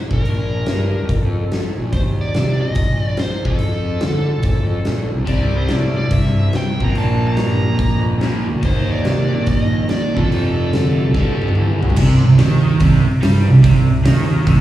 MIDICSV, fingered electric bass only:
0, 0, Header, 1, 3, 480
1, 0, Start_track
1, 0, Tempo, 418118
1, 289, Time_signature, 4, 2, 24, 8
1, 16769, End_track
2, 0, Start_track
2, 0, Title_t, "Fingered electric bass"
2, 0, Program_c, 0, 33
2, 127, Note_on_c, 0, 34, 82
2, 279, Note_off_c, 0, 34, 0
2, 313, Note_on_c, 0, 34, 84
2, 747, Note_off_c, 0, 34, 0
2, 797, Note_on_c, 0, 43, 88
2, 1076, Note_off_c, 0, 43, 0
2, 1186, Note_on_c, 0, 41, 87
2, 1255, Note_off_c, 0, 41, 0
2, 1414, Note_on_c, 0, 41, 80
2, 1634, Note_off_c, 0, 41, 0
2, 2052, Note_on_c, 0, 34, 77
2, 2203, Note_off_c, 0, 34, 0
2, 2217, Note_on_c, 0, 39, 90
2, 2660, Note_off_c, 0, 39, 0
2, 2704, Note_on_c, 0, 48, 85
2, 2990, Note_off_c, 0, 48, 0
2, 3108, Note_on_c, 0, 34, 92
2, 3177, Note_off_c, 0, 34, 0
2, 3339, Note_on_c, 0, 34, 85
2, 3558, Note_off_c, 0, 34, 0
2, 3967, Note_on_c, 0, 41, 80
2, 4123, Note_off_c, 0, 41, 0
2, 4160, Note_on_c, 0, 41, 92
2, 4595, Note_off_c, 0, 41, 0
2, 4631, Note_on_c, 0, 50, 89
2, 4917, Note_off_c, 0, 50, 0
2, 5023, Note_on_c, 0, 35, 79
2, 5085, Note_off_c, 0, 35, 0
2, 5092, Note_on_c, 0, 34, 96
2, 5241, Note_off_c, 0, 34, 0
2, 5258, Note_on_c, 0, 41, 83
2, 5480, Note_off_c, 0, 41, 0
2, 5585, Note_on_c, 0, 34, 65
2, 5866, Note_off_c, 0, 34, 0
2, 5899, Note_on_c, 0, 36, 72
2, 6047, Note_off_c, 0, 36, 0
2, 6059, Note_on_c, 0, 36, 91
2, 6506, Note_off_c, 0, 36, 0
2, 6549, Note_on_c, 0, 45, 84
2, 6838, Note_off_c, 0, 45, 0
2, 6954, Note_on_c, 0, 43, 82
2, 7025, Note_off_c, 0, 43, 0
2, 7208, Note_on_c, 0, 43, 83
2, 7419, Note_off_c, 0, 43, 0
2, 7816, Note_on_c, 0, 34, 83
2, 7973, Note_off_c, 0, 34, 0
2, 7997, Note_on_c, 0, 34, 96
2, 8439, Note_off_c, 0, 34, 0
2, 8479, Note_on_c, 0, 43, 89
2, 8766, Note_off_c, 0, 43, 0
2, 8867, Note_on_c, 0, 41, 86
2, 8944, Note_off_c, 0, 41, 0
2, 9128, Note_on_c, 0, 41, 82
2, 9342, Note_off_c, 0, 41, 0
2, 9747, Note_on_c, 0, 38, 83
2, 9901, Note_off_c, 0, 38, 0
2, 9909, Note_on_c, 0, 39, 97
2, 10357, Note_off_c, 0, 39, 0
2, 10397, Note_on_c, 0, 48, 85
2, 10687, Note_off_c, 0, 48, 0
2, 10800, Note_on_c, 0, 34, 82
2, 10874, Note_off_c, 0, 34, 0
2, 11038, Note_on_c, 0, 34, 76
2, 11258, Note_off_c, 0, 34, 0
2, 11677, Note_on_c, 0, 41, 80
2, 11828, Note_off_c, 0, 41, 0
2, 11839, Note_on_c, 0, 41, 93
2, 12283, Note_off_c, 0, 41, 0
2, 12313, Note_on_c, 0, 50, 93
2, 12606, Note_off_c, 0, 50, 0
2, 12707, Note_on_c, 0, 36, 77
2, 12787, Note_off_c, 0, 36, 0
2, 12799, Note_on_c, 0, 43, 101
2, 12943, Note_off_c, 0, 43, 0
2, 12952, Note_on_c, 0, 38, 81
2, 13098, Note_off_c, 0, 38, 0
2, 13104, Note_on_c, 0, 41, 76
2, 13256, Note_off_c, 0, 41, 0
2, 13277, Note_on_c, 0, 40, 71
2, 13558, Note_off_c, 0, 40, 0
2, 13594, Note_on_c, 0, 38, 79
2, 13740, Note_off_c, 0, 38, 0
2, 13749, Note_on_c, 0, 36, 83
2, 14042, Note_off_c, 0, 36, 0
2, 14077, Note_on_c, 0, 36, 76
2, 14226, Note_off_c, 0, 36, 0
2, 14237, Note_on_c, 0, 39, 94
2, 14679, Note_off_c, 0, 39, 0
2, 14703, Note_on_c, 0, 36, 97
2, 14996, Note_off_c, 0, 36, 0
2, 15199, Note_on_c, 0, 43, 90
2, 15483, Note_off_c, 0, 43, 0
2, 15514, Note_on_c, 0, 36, 78
2, 15657, Note_off_c, 0, 36, 0
2, 15663, Note_on_c, 0, 36, 88
2, 15953, Note_off_c, 0, 36, 0
2, 15979, Note_on_c, 0, 36, 82
2, 16130, Note_off_c, 0, 36, 0
2, 16142, Note_on_c, 0, 39, 95
2, 16583, Note_off_c, 0, 39, 0
2, 16618, Note_on_c, 0, 36, 102
2, 16769, Note_off_c, 0, 36, 0
2, 16769, End_track
3, 0, Start_track
3, 0, Title_t, "Muted fingered electric bass strokes"
3, 15021, Note_on_c, 9, 29, 43
3, 15136, Note_off_c, 9, 29, 0
3, 16769, End_track
0, 0, End_of_file